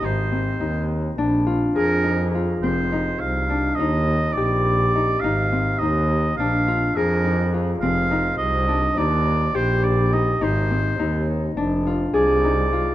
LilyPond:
<<
  \new Staff \with { instrumentName = "Oboe" } { \time 9/8 \key f \dorian \tempo 4. = 69 c''4. r4. bes'4 r8 | c''4 f''4 ees''4 d''4. | f''4 ees''4 f''4 bes'4 r8 | f''4 ees''4 d''4 c''8 d''8 ees''8 |
c''4. r4. d''4. | }
  \new Staff \with { instrumentName = "Harp" } { \time 9/8 \key f \dorian ees'8 c'8 ees'4 d'8 f'8 aes'8 ees'8 f'8 | c'8 ees'4 d'8 ees'4 g'4 ees'8 | ees'8 c'8 ees'4 d'8 f'8 aes'8 ees'8 f'8 | c'8 ees'4 d'8 ees'4 g'4 ees'8 |
ees'8 c'8 ees'4 d'8 f'8 aes'8 ees'8 f'8 | }
  \new Staff \with { instrumentName = "Double bass" } { \clef bass \time 9/8 \key f \dorian aes,,4 ees,4 bes,,4 f,4. | f,,4 c,4 ees,4 bes,,4. | aes,,4 ees,4 bes,,4 f,4. | f,,4 c,4 ees,4 bes,,4. |
aes,,4 ees,4 f,,4 c,4. | }
>>